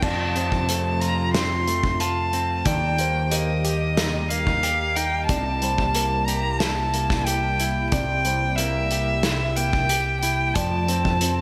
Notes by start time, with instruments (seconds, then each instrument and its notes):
0.02 picked electric bass F2, clean electric guitar F2, analog synth pad C3 F3 A3 F4, felt piano D5, violin A5, kick, crash
0.36 clean electric guitar C3, felt piano C5, closed hi-hat
0.52 kick
0.68 clean electric guitar A3, felt piano C5, closed hi-hat
1.01 clean electric guitar F4, violin A#5, closed hi-hat
1.34 clean electric guitar C4, violin C6, snare, closed hi-hat
1.68 clean electric guitar A3, closed hi-hat
1.83 kick
2.00 clean electric guitar F4, violin A5, closed hi-hat
2.33 clean electric guitar C4, closed hi-hat
2.65 picked electric bass D#2, clean electric guitar D#3, analog synth pad D#3 G3 A#3 G4, felt piano D5, violin G5, kick, closed hi-hat
2.98 clean electric guitar A#3, felt piano C5, closed hi-hat
3.31 clean electric guitar A#3, felt piano A#4, violin D#5, closed hi-hat
3.65 clean electric guitar G4, closed hi-hat
3.97 clean electric guitar D#4, snare, closed hi-hat
4.29 clean electric guitar A#3, violin F5, closed hi-hat
4.47 kick
4.63 clean electric guitar G4, closed hi-hat
4.96 clean electric guitar D#4, violin G5, closed hi-hat
5.27 picked electric bass C2, analog synth pad C3 E4, clean electric guitar C3, felt piano D5, violin A5, kick, closed hi-hat
5.62 clean electric guitar G3, felt piano C5, closed hi-hat
5.78 kick
5.95 clean electric guitar A#3, felt piano A#4, closed hi-hat
6.26 clean electric guitar G4, violin A#5, closed hi-hat
6.59 clean electric guitar E4, violin A5, snare, closed hi-hat
6.94 clean electric guitar A#3, closed hi-hat
7.10 kick, snare
7.25 clean electric guitar G4, violin G5, closed hi-hat
7.60 clean electric guitar E4, closed hi-hat
7.90 picked electric bass C2, clean electric guitar C3, felt piano D5, violin G5, kick, closed hi-hat
8.25 clean electric guitar G3, felt piano C5, closed hi-hat
8.56 clean electric guitar A#3, felt piano A#4, violin E5, closed hi-hat
8.91 clean electric guitar G4, closed hi-hat
9.23 clean electric guitar E4, snare, closed hi-hat
9.56 clean electric guitar A#3, violin G5, closed hi-hat
9.73 kick
9.89 clean electric guitar G4, closed hi-hat
10.21 clean electric guitar E4, violin G5, closed hi-hat
10.54 picked electric bass F2, clean electric guitar F3, analog synth pad F3 A3 F4, felt piano D5, violin A5, kick, closed hi-hat
10.88 clean electric guitar C4, felt piano C5, closed hi-hat
11.05 kick
11.21 clean electric guitar C4, felt piano C5, closed hi-hat